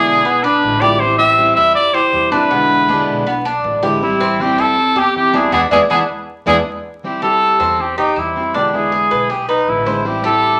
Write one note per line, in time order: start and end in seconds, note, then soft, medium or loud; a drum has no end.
0.00 0.23 B2 medium
0.00 0.23 D3 medium
0.00 0.24 G#3 medium
0.00 0.24 B3 medium
0.00 0.44 B3 medium
0.00 0.24 D4 medium
0.00 0.24 E4 loud
0.00 0.45 G#4 loud
0.06 0.59 B1 medium
0.25 0.43 B3 medium
0.25 muted steel-string acoustic guitar stroke medium
0.43 0.82 D4 medium
0.43 0.81 D4 medium
0.43 0.82 B4 loud
0.62 1.51 A1 loud
0.62 0.81 D3 soft
0.62 0.81 G#3 soft
0.62 0.81 B3 medium
0.62 0.80 E4 medium
0.80 1.00 D3 medium
0.80 1.00 G#3 medium
0.80 1.00 B3 medium
0.80 1.00 E4 medium
0.80 1.01 F4 medium
0.80 1.18 G4 medium
0.80 1.01 D5 loud
0.99 1.37 E3 medium
0.99 1.37 G3 medium
0.99 1.38 C4 medium
0.99 1.17 E4 loud
0.99 1.39 E4 medium
0.99 1.18 C5 loud
1.18 1.56 C4 medium
1.18 1.54 G4 loud
1.18 1.54 E5 loud
1.38 1.75 E3 medium
1.38 1.75 G3 medium
1.38 1.75 C4 medium
1.38 1.76 E4 loud
1.55 2.10 E2 medium
1.55 1.94 E4 medium
1.55 1.74 G4 medium
1.55 1.73 E5 loud
1.75 1.95 G4 medium
1.75 1.95 D5 loud
1.75 muted steel-string acoustic guitar stroke medium
1.94 2.31 E4 medium
1.94 2.31 G4 medium
1.94 2.32 C5 loud
2.13 3.02 E2 loud
2.13 2.31 E3 soft
2.13 2.32 G3 medium
2.13 2.32 C4 medium
2.13 2.31 E4 soft
2.31 2.51 G3 medium
2.31 2.51 C4 medium
2.31 3.41 D4 medium
2.31 2.50 D4 medium
2.31 2.50 E4 medium
2.31 3.41 B4 loud
2.51 2.87 B2 medium
2.51 2.88 D3 medium
2.51 2.88 G#3 medium
2.51 2.88 B3 medium
2.51 2.89 E4 medium
2.88 3.25 B2 medium
2.88 3.25 D3 loud
2.88 3.25 G#3 loud
2.88 3.25 B3 loud
2.88 3.25 D4 medium
2.88 3.26 E4 loud
3.08 3.60 B1 medium
3.26 3.45 B3 medium
3.26 muted steel-string acoustic guitar stroke medium
3.45 3.82 D4 medium
3.63 4.52 A1 loud
3.63 3.82 D3 soft
3.63 3.82 G#3 soft
3.63 3.82 B3 medium
3.63 3.82 E4 medium
3.83 4.01 D3 medium
3.83 4.02 G#3 medium
3.83 4.01 B3 medium
3.83 4.01 E4 medium
3.83 4.19 G4 medium
4.01 4.38 E3 medium
4.01 4.39 G3 medium
4.01 4.42 G3 loud
4.01 4.39 C4 medium
4.01 4.39 E4 medium
4.01 4.43 E4 medium
4.21 4.57 C4 medium
4.39 4.76 E3 medium
4.39 4.76 G3 medium
4.39 4.59 C4 medium
4.39 4.76 C4 loud
4.39 4.77 E4 loud
4.39 4.62 G4 loud
4.58 5.11 E2 medium
4.58 4.99 C4 loud
4.58 4.95 E4 medium
4.58 5.00 A4 loud
4.77 muted steel-string acoustic guitar stroke medium
4.96 5.16 B3 medium
4.96 5.32 G4 medium
4.96 5.16 G4 loud
5.15 5.50 E2 medium
5.15 5.33 E3 soft
5.15 5.33 G3 soft
5.15 5.33 C4 medium
5.15 5.37 C4 medium
5.15 5.32 E4 soft
5.15 5.38 G4 loud
5.33 5.52 G3 medium
5.33 5.53 B3 medium
5.33 5.52 C4 medium
5.33 5.51 D4 medium
5.33 5.52 E4 medium
5.33 5.52 G#4 medium
5.52 5.67 E2 loud
5.52 5.64 E3 loud
5.52 5.64 G#3 medium
5.52 5.65 B3 loud
5.52 5.64 B3 loud
5.52 5.65 B3 loud
5.52 5.65 D4 medium
5.52 5.65 E4 medium
5.52 5.62 G#4 loud
5.71 5.85 E2 medium
5.71 5.83 E3 medium
5.71 5.84 G#3 medium
5.71 5.84 B3 loud
5.71 5.83 B3 medium
5.71 5.83 D4 loud
5.71 5.83 E4 loud
5.71 5.81 G#4 loud
5.90 6.04 E2 loud
5.90 6.03 E3 loud
5.90 6.03 G#3 loud
5.90 6.02 B3 loud
5.90 6.03 B3 loud
5.90 6.02 D4 loud
5.90 6.02 E4 medium
5.90 5.99 G#4 loud
6.46 6.61 E2 loud
6.46 6.59 E3 medium
6.46 6.59 G#3 medium
6.46 6.58 B3 loud
6.46 6.59 B3 loud
6.46 6.60 B3 loud
6.46 6.59 D4 loud
6.46 6.59 E4 loud
6.46 6.56 G#4 loud
7.03 7.21 E3 medium
7.03 7.22 G3 medium
7.03 7.22 C4 medium
7.03 7.21 E4 medium
7.03 7.22 G4 medium
7.22 7.79 G3 medium
7.22 7.78 C4 medium
7.22 7.80 E4 medium
7.22 7.59 G4 medium
7.22 7.82 A4 loud
7.60 8.12 E2 loud
7.60 7.96 C4 medium
7.80 7.97 G4 medium
7.80 muted steel-string acoustic guitar stroke medium
7.98 8.20 D#4 medium
7.98 8.16 G4 medium
8.16 9.05 E2 medium
8.16 8.35 E3 soft
8.16 8.35 G3 medium
8.16 8.35 C4 soft
8.16 8.34 E4 soft
8.16 8.57 E4 medium
8.16 8.53 C5 medium
8.36 8.55 G3 medium
8.36 8.54 C4 medium
8.36 8.54 E4 medium
8.54 8.72 B2 medium
8.54 8.73 D3 medium
8.54 8.73 G#3 medium
8.54 8.73 B3 medium
8.54 8.91 D4 medium
8.54 8.72 E4 medium
8.54 8.76 G4 medium
8.73 9.29 D3 medium
8.73 9.29 G#3 medium
8.73 9.29 B3 medium
8.73 9.30 E4 medium
8.73 9.32 G#4 loud
8.92 9.10 G#4 medium
9.11 9.63 B1 medium
9.11 9.29 B4 medium
9.30 9.48 G4 medium
9.30 9.48 G#4 medium
9.30 muted steel-string acoustic guitar stroke medium
9.48 9.71 D#4 medium
9.48 9.85 B4 medium
9.67 10.56 A1 medium
9.67 9.85 D3 soft
9.67 9.85 G#3 soft
9.67 9.85 B3 medium
9.67 9.84 E4 soft
9.67 10.08 E4 medium
9.85 10.03 D3 medium
9.85 10.04 G#3 medium
9.85 10.04 B3 medium
9.85 10.04 E4 medium
9.85 10.23 C5 medium
10.04 10.22 E3 medium
10.04 10.23 G3 medium
10.04 10.23 C4 medium
10.04 10.22 E4 medium
10.04 10.24 G4 medium
10.23 10.60 G3 medium
10.23 10.60 C4 medium
10.23 10.60 E4 medium
10.23 10.60 G4 medium
10.23 10.60 A4 loud